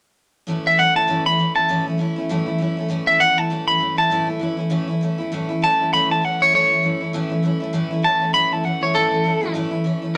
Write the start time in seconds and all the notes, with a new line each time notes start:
0.47 A2 E3 A3 C#4 E4
0.65 A3 C#4 E4 E5
0.77 E3 A3 C#4 E4 F#5
0.94 A3 C#4 E4 A5
1.07 A2 E3 A3 C#4 E4
1.25 A3 C#4 E4 B5
1.37 E3 A3 C#4 E4
1.55 A3 C#4 E4 A5
1.68 A2 E3 A3 C#4 E4
1.86 A3 C#4 E4
1.98 E3 A3 C#4 E4
2.16 A3 C#4 E4
2.29 A2 E3 A3 C#4 E4
2.46 A3 C#4 E4
2.58 E3 A3 C#4 E4
2.77 A3 C#4 E4
2.88 A2 E3 A3 C#4 E4
3.07 A3 C#4 E4 E5
3.18 E3 A3 C#4 E4 F#5
3.37 A3 C#4 E4 A5
3.50 A2 E3 A3 C#4 E4
3.68 A3 C#4 E4 B5
3.79 E3 A3 C#4 E4
3.97 A3 C#4 E4 A5
4.10 A2 E3 A3 C#4 E4
4.27 A3 C#4 E4
4.39 E3 A3 C#4 E4
4.57 A3 C#4 E4
4.70 A2 E3 A3 C#4 E4
4.88 A3 C#4 E4
5.01 E3 A3 C#4 E4
5.18 A3 C#4 E4
5.32 A2 E3 A3 C#4 E4
5.49 A3 C#4 E4
5.62 E3 A3 C#4 E4 A5
5.80 A3 C#4 E4
5.93 A2 E3 A3 C#4 E4 B5
6.10 A3 C#4 E4 A5
6.22 E3 A3 C#4 E4 F#5
6.40 A3 C#4 E4 C#5
6.52 A2 E3 A3 C#4 E4 C#5
6.70 A3 C#4 E4
6.83 E3 A3 C#4 E4
7.00 A3 C#4 E4
7.13 A2 E3 A3 C#4 E4
7.30 A3 C#4 E4
7.43 E3 A3 C#4 E4
7.60 A3 C#4 E4
7.73 A2 E3 A3 C#4 E4
7.91 A3 C#4 E4
8.02 E3 A3 C#4 E4 A5
8.20 A3 C#4 E4
8.33 A2 E3 A3 C#4 E4 B5
8.51 A3 C#4 E4 A5
8.64 E3 A3 C#4 E4 F#5
8.81 A3 C#4 E4 C#5
8.94 A2 E3 A3 C#4 E4 A4
9.11 A3 C#4 E4
9.24 E3 A3 C#4 E4
9.41 A3 C#4 E4
9.54 A2 E3 A3 C#4 E4
9.71 A3 C#4 E4
9.84 E3 A3 C#4 E4
10.02 A3 C#4 E4